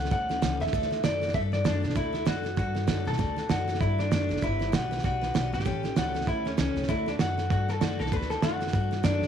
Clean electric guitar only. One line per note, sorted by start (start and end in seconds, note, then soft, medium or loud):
0.00 0.11 F#5 medium
0.12 0.57 F#5 medium
0.61 1.04 E5 loud
1.04 1.34 D5 medium
1.35 1.40 E5 loud
1.53 1.81 D5 medium
1.66 1.95 D4 medium
1.96 2.28 E4 medium
2.28 2.57 F#4 medium
2.58 3.08 F#4 medium
3.08 3.50 A4 loud
3.51 3.80 F#4 medium
3.81 3.99 E4 medium
3.99 4.11 D4 medium
4.12 4.43 D4 medium
4.44 4.74 E4 loud
4.74 5.04 F#4 medium
5.05 5.50 F#4 medium
5.54 5.97 G4 loud
5.97 6.28 F#4 loud
6.28 6.46 E4 medium
6.47 6.52 C#4 medium
6.58 6.90 C#4 medium
6.89 7.07 E4 loud
7.08 7.13 D4 medium
7.20 7.50 F#4 loud
7.51 7.69 F#4 loud
7.69 7.81 A4 loud
7.81 7.99 F#4 medium
7.99 8.13 A4 loud
8.13 8.30 B4 loud
8.30 8.43 A4 medium
8.43 9.06 F#4 loud
9.04 9.27 D4 loud